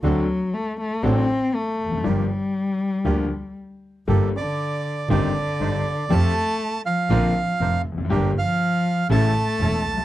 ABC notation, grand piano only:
X:1
M:4/4
L:1/16
Q:1/4=120
K:Gm
V:1 name="Grand piano" clef=bass
[D,,D,^F,CDA]2 z6 [A,,,A,,F,CDA]2 z4 z/2 =E,,/2 =F,,/2 ^F,,/2 | [G,,,G,,F,B,DG]2 z6 [D,,D,F,B,DG]2 z6 | [G,,,G,,G,B,DA]2 z6 [G,,,G,,E,CDG]2 z2 [G,,,G,,]2 z2 | [F,,F,A,CG]2 z6 [B,,,B,,D,B,CF]2 z2 [F,,,F,,]2 z/2 =E,,/2 F,,/2 ^F,,/2 |
[G,,,G,,D,G,B,G]2 z6 [A,,,A,,^C,=E,A,=E]2 z2 [=E,,,=E,,]2 z/2 =B,,,/2 =C,,/2 z/2 |]